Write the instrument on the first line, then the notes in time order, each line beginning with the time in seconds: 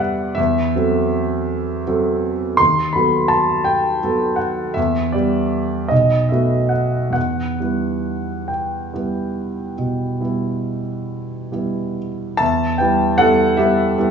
grand piano
Already playing: E2 G3 B3 G4 D5 E5 F#5
0.35 E2 E5
0.76 F#3 C4 A4
1.87 F#3 C4 A4
2.57 D#2 C6
2.93 F#3 B3 A4 B5
3.28 A5
3.64 G5
4.03 F#3 B3 A4
4.36 F#5
4.74 E2 E5
5.12 G3 B3 G4 D5
5.88 B1 D#5
6.29 A3 B3 F#4 E5
6.69 F#5
7.10 E2 F#5
7.60 G3 B3 E4
8.48 G5
8.94 G3 B3 E4
9.78 B2
10.21 G3 B3 E4
11.52 G3 B3 E4
12.37 E2 E5 A5
12.78 G3 B3 E4 B4 G5
13.18 G3 B3 E4 A4 F#5
13.57 G3 B3 E4 G4 E5
13.98 G3 B3 E4